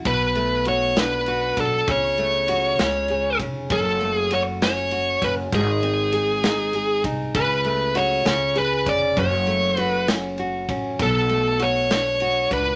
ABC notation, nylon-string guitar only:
X:1
M:6/8
L:1/8
Q:3/8=66
K:F#m
V:1 name="Nylon-string guitar"
B,, A, F D F D | C, A, F C, G C | F,, A, F C F C | G,, ^B, G ^D G D |
C, A, F C, G C | F,, A, F C F C | B,, A, F D F D |]